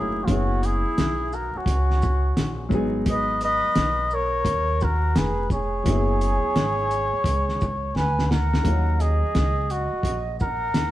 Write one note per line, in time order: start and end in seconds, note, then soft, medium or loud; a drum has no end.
0.00 0.24 F1 medium
0.00 0.24 F#3 medium
0.00 0.28 A#3 soft
0.00 0.27 C#4 soft
0.00 0.28 D#4 soft
0.00 0.24 E4 medium
0.00 0.26 G#4 medium
0.00 0.29 A#4 medium
0.23 2.67 F#3 medium
0.23 0.28 C#4 medium
0.23 0.32 F4 medium
0.27 0.82 F#1 loud
0.27 2.67 B3 medium
0.27 0.64 C#4 medium
0.27 2.68 C#4 medium
0.27 2.69 E4 medium
0.27 0.67 F#4 loud
0.27 kick loud
0.27 closed hi-hat medium
0.31 2.70 G#4 medium
0.62 1.34 E4 medium
0.62 1.36 G#4 loud
0.62 closed hi-hat medium
0.62 shaker medium
0.86 muted upright bass stroke soft
0.98 1.52 B1 medium
0.98 snare loud
0.98 closed hi-hat medium
1.33 1.58 F#4 medium
1.33 1.59 A#4 medium
1.33 shaker soft
1.55 2.72 C#4 medium
1.55 2.73 F#4 medium
1.55 muted upright bass stroke soft
1.66 2.33 C#2 medium
1.66 kick medium
1.66 closed hi-hat medium
1.90 snare soft
2.02 kick medium
2.02 shaker medium
2.37 2.70 A#1 medium
2.37 snare medium
2.37 closed hi-hat medium
2.69 3.60 G#1 medium
2.69 5.45 F#3 medium
2.69 5.46 G#3 medium
2.69 5.47 B3 medium
2.69 kick loud
2.69 shaker soft
2.73 5.48 D#4 medium
2.73 5.48 G#4 medium
3.06 3.40 B4 loud
3.06 kick loud
3.06 closed hi-hat medium
3.10 3.41 D#5 loud
3.41 4.15 B4 loud
3.41 4.16 D#5 loud
3.41 closed hi-hat medium
3.41 shaker medium
3.64 muted upright bass stroke soft
3.75 4.43 B1 medium
3.75 snare loud
3.75 closed hi-hat medium
4.10 4.83 A#4 medium
4.10 4.85 C#5 loud
4.10 shaker soft
4.45 5.12 D#2 loud
4.45 kick medium
4.45 closed hi-hat medium
4.81 5.18 F#4 medium
4.81 5.19 A#4 loud
4.81 kick loud
4.81 shaker medium
5.16 5.82 F1 medium
5.16 5.51 G#4 medium
5.16 5.52 B4 medium
5.16 snare loud
5.16 closed hi-hat medium
5.50 7.66 G#4 medium
5.50 7.92 C#5 loud
5.50 kick medium
5.50 shaker medium
5.83 6.40 F#1 loud
5.83 8.60 F#3 medium
5.83 8.61 B3 medium
5.83 8.61 C#4 medium
5.83 kick loud
5.83 closed hi-hat loud
5.88 8.62 E4 medium
5.88 8.63 G#4 medium
6.21 closed hi-hat medium
6.21 shaker soft
6.44 muted upright bass stroke soft
6.56 7.10 G#1 loud
6.56 snare loud
6.56 closed hi-hat medium
6.91 closed hi-hat soft
6.91 shaker soft
7.13 muted upright bass stroke soft
7.24 7.91 C#2 medium
7.24 kick medium
7.24 closed hi-hat medium
7.49 snare soft
7.61 kick medium
7.61 shaker medium
7.95 8.61 D2 loud
7.95 8.28 B4 medium
7.95 8.28 G#5 medium
7.95 snare medium
8.19 snare medium
8.29 9.03 A#4 medium
8.29 9.01 F#5 medium
8.29 snare loud
8.54 snare medium
8.62 9.20 D#2 loud
8.62 8.72 E3 soft
8.62 10.91 A#3 medium
8.62 10.91 C#4 medium
8.62 kick loud
8.62 closed hi-hat medium
8.66 10.91 F#3 medium
8.66 10.91 D#4 medium
8.66 10.91 A#4 medium
9.00 9.72 G#4 loud
9.00 9.70 D#5 medium
9.00 closed hi-hat medium
9.00 shaker soft
9.23 muted upright bass stroke soft
9.35 9.89 C#2 medium
9.35 snare loud
9.35 closed hi-hat medium
9.70 10.24 F#4 medium
9.70 10.39 D#5 medium
9.70 closed hi-hat soft
9.70 shaker soft
9.92 muted upright bass stroke soft
10.03 10.70 A#1 medium
10.03 kick medium
10.03 closed hi-hat medium
10.39 10.91 A#4 loud
10.39 10.91 F#5 medium
10.39 kick medium
10.39 shaker medium
10.74 10.91 D#2 medium
10.74 snare loud
10.74 closed hi-hat medium